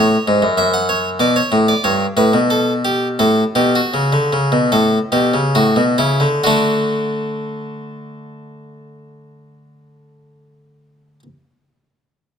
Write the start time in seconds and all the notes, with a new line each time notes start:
Already playing: A2 C#5
0.28 G#2
0.42 F#2
0.58 F#2 E5
0.74 F#5
0.89 C#5
1.20 B2 D5
1.36 C#5
1.52 A2
1.68 D5
1.84 G2 C#5
2.17 A2 B4
2.33 B2
2.50 A4
2.85 G4
3.19 A2 A4
3.55 B2 G4
3.75 F#4
3.94 C#3
4.13 D3
4.33 C#3
4.52 B2
4.72 A2 A4
5.12 B2 G4
5.34 C#3
5.55 A2 F#4
5.76 B2
5.98 C#3 E4
6.20 D3
6.44 D3 A3 D4 F#4